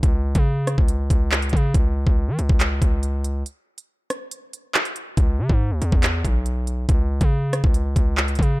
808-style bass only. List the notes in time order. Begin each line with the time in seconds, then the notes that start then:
0.03 C#2
0.35 C#3
0.78 C#2
1.10 C#2
1.53 C#3
1.74 C#2
2.07 C#2
2.28 E3
2.39 C#2
2.49 C#2
2.82 C#2
5.17 C#2
5.39 C#3
5.49 G#2
5.71 D2
5.82 E2
5.92 E2
6.25 B1
6.89 C#2
7.21 C#3
7.64 C#2
7.96 C#2
8.39 C#3